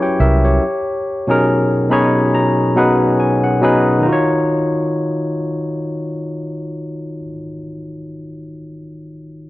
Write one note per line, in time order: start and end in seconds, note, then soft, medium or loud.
0.00 0.64 F#3 medium
0.00 0.64 C#4 medium
0.00 0.64 E4 medium
0.00 0.45 G4 medium
0.00 0.64 B4 medium
0.00 0.03 C#5 medium
0.00 0.19 C#5 soft
0.00 0.19 G5 medium
0.20 0.57 C2 medium
0.20 0.43 A#4 medium
0.20 0.43 E5 medium
0.45 0.85 G4 soft
0.45 0.85 C#5 medium
1.27 1.82 B2 medium
1.27 1.82 F#3 medium
1.27 1.83 C#4 medium
1.27 1.83 D#4 medium
1.27 1.83 G#4 medium
1.27 1.84 A#4 medium
1.90 2.65 B2 medium
1.90 2.66 F#3 medium
1.90 2.66 C#4 medium
1.90 2.66 D#4 medium
1.90 2.67 G#4 medium
1.90 2.67 C#5 medium
1.90 2.31 B5 medium
2.34 2.74 A#5 medium
2.75 3.51 B2 medium
2.75 3.51 F#3 medium
2.75 3.52 C#4 medium
2.75 3.52 D#4 medium
2.75 3.52 G#4 medium
2.75 3.53 B4 medium
2.75 3.17 F#5 medium
3.20 3.42 G#5 medium
3.44 3.61 F#5 medium
3.61 3.99 B2 medium
3.61 4.00 F#3 medium
3.61 4.00 C#4 medium
3.61 4.00 D#4 medium
3.61 4.00 G#4 medium
3.61 4.01 B4 medium
3.61 4.02 D#5 medium
3.99 7.19 D#3 medium
3.99 7.23 D#4 medium
4.06 7.26 F4 medium
4.06 7.29 F#4 medium
4.12 7.33 C#5 medium